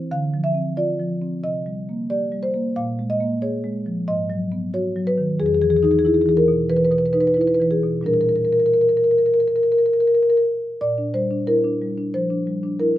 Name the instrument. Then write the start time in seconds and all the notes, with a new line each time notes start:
marimba
Already playing: C4
0.11 D3 F5
0.34 F3
0.44 E5
0.54 C4
0.77 F4 D5
1.00 F3
1.22 C4
1.44 C3 D#5
1.66 G3
1.89 A#3
2.10 G4 D5
2.32 G3
2.43 C5
2.54 A#3
2.76 A#2 F5
2.99 G#3
3.10 D#5
3.20 A#3
3.42 G#4 C#5
3.64 G#3
3.86 F3
4.08 G#2 D#5
4.30 F#3
4.52 B3
4.74 F#4 C#5
4.96 F#3
5.07 B4
5.18 D#3
5.40 E2 G#4
5.46 G#4
5.54 G#4
5.62 E3 G#4
5.70 G#4
5.77 G#4
5.83 D#4 G#4
5.91 G#4
5.99 G#4
6.05 E4 G#4
6.14 G#4
6.22 G#4
6.26 E3 G#4
6.37 A#4
6.48 B2
6.70 E3 B4
6.76 B4
6.85 B4
6.91 B2 B4
6.98 B4
7.06 B4
7.13 D#4 B4
7.20 B4
7.27 B4
7.34 E4 B4
7.41 B4
7.47 B4
7.54 B4
7.60 E3 B4
7.71 G#4
7.83 B2
8.01 A#2 G3 D4
8.06 A#4
8.13 A#4
8.21 A#4
8.29 A#4
8.36 A#4
8.45 A#4
8.53 A#4
8.60 A#4
8.66 A#4
8.74 A#4
8.81 A#4
8.89 A#4
8.97 A#4
9.04 A#4
9.11 A#4
9.18 A#4
9.26 A#4
9.34 A#4
9.40 A#4
9.48 A#4
9.56 A#4
9.63 A#4
9.72 A#4
9.78 A#4
9.86 A#4
9.93 A#4
10.00 A#4
10.07 A#4
10.15 A#4
10.23 A#4
10.30 A#4
10.37 A#4
10.81 A#2 D5
10.98 D4
11.14 G3 C5
11.31 D4
11.47 E4 A#4
11.64 D4
11.81 G3
11.98 D4
12.14 F3 C5
12.30 D4
12.47 G3
12.63 D4
12.80 E4 A#4